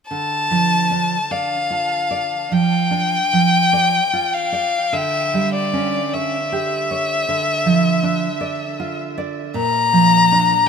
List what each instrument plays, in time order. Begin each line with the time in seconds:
0.08 nylon-string guitar D3, violin A5
0.51 nylon-string guitar F3
0.91 nylon-string guitar D4
1.31 nylon-string guitar D5, violin F5
1.70 nylon-string guitar F4
2.11 nylon-string guitar D5
2.52 nylon-string guitar F3, violin G5
2.91 nylon-string guitar D4
3.33 nylon-string guitar F3
3.73 nylon-string guitar D5
4.13 nylon-string guitar F4
4.34 violin F5
4.52 nylon-string guitar D5
4.93 nylon-string guitar D3, violin E5
5.34 nylon-string guitar G3
5.54 violin D5
5.73 nylon-string guitar C#4
6.13 nylon-string guitar C#5, violin E5
6.52 nylon-string guitar G4
6.91 nylon-string guitar C#5
7.29 nylon-string guitar D3
7.66 nylon-string guitar F3
8.03 nylon-string guitar D4
8.41 nylon-string guitar D5
8.80 nylon-string guitar F4
9.18 nylon-string guitar D5
9.54 nylon-string guitar A#2, violin A#5
9.93 nylon-string guitar F3
10.32 nylon-string guitar D4